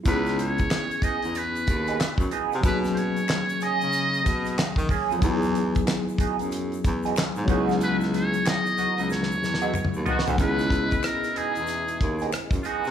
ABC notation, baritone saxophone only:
X:1
M:4/4
L:1/16
Q:"Swing 16ths" 1/4=93
K:C#dor
V:1 name="Baritone saxophone" clef=bass
C,,4 z2 E,, E,,3 D,,2 F,, F,, z ^B,, | B,,4 z2 C, C,3 B,,2 D, D, z ^E,, | E,,4 z2 F,, F,,3 E,,2 G,, G,, C,,2- | C,,4 z2 C,, C,,3 E,,2 D,, D,, z =D,, |
C,,4 z2 E,, E,,3 D,,2 F,, F,, z ^B,, |]